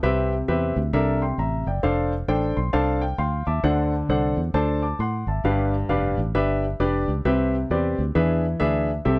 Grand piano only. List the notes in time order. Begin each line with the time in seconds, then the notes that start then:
0.03 C3 C4 G4 B4 E5
0.48 C4 G4 B4 E5
0.93 C3 D4 A4 A#4 E5
1.22 G5 C6
1.39 E5 A#5
1.67 D5 G5
1.83 D4 A4 C5 F5
2.28 D4 A4 C5 G5
2.57 C6
2.73 D4 A4 C5 F5 A5
3.01 G5
3.18 F5 G5 C6
3.47 E5 A5 D6
3.64 D3 D4 A4 C5 F#5
4.10 D4 A4 C5 F#5
4.54 D4 A4 C5 A5
4.82 A5 D6
5.00 F#5 C6
5.28 E5 A5
5.45 G2 D4 G4 B4 F5
5.89 D4 G4 B4 F5
6.35 D4 G4 B4 E5
6.80 D4 G4 B4 D5
7.25 C3 C4 G4 B4 E5
7.71 C4 G4 B4 D5
8.15 E3 D4 G#4 B4 E5
8.60 D4 G#4 B4 E5
9.05 C3 C4 G4 A4 E5